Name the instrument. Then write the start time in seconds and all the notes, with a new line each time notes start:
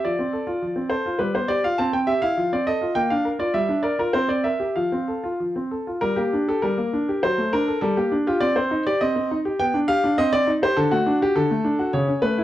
grand piano
0.05 F3 D5
0.19 C4
0.33 A4
0.47 F4
0.62 F3
0.76 C4
0.90 A4 C5
1.06 F4
1.19 G3 B4
1.34 B3 C5
1.48 G4 D5
1.64 F4 F5
1.78 C4 A5
1.93 C4 G5
2.07 G4 E5
2.22 E4 F5
2.37 F3
2.53 C4 D5
2.67 A4 D#5
2.81 F4
2.95 A#3 G5
3.10 D4 F5
3.25 A#4
3.39 F4 D5
3.54 G3 E5
3.69 D4
3.83 A#4 D5
3.99 F4 A#4
4.13 C4 C5
4.28 C4 D5
4.44 A#4 E5
4.60 G4
4.76 F3 F5
4.92 C4
5.08 A4
5.24 F4
5.40 F3
5.56 C4
5.71 A4
5.87 F4
6.01 G3 A#4
6.16 A#3 G4
6.33 D4
6.48 G4 A4
6.62 G3 A#4
6.78 A#3
6.93 D4
7.09 G4
7.23 F#3 C5
7.38 A3
7.53 D4 A#4
7.68 A4
7.81 G3 A4
7.97 A#3 G4
8.12 D4
8.27 F4 G4
8.40 C4 D5
8.56 C4 C5
8.71 D#4
8.87 G4 D5
9.01 C4 D#5
9.16 C4
9.31 D#4
9.45 G4
9.59 B3 G5
9.74 D4
9.88 G4 F5
10.04 D4
10.18 C4 D#5
10.33 C4 D5
10.47 D#4
10.62 G4 C5
10.77 D3 A4
10.91 A3 F#4
11.07 D4
11.22 F#4 G4
11.36 D3 A4
11.51 A3
11.64 D4
11.79 F#4
11.93 C#3 C#5
12.08 C#4
12.22 A3 B4
12.38 E4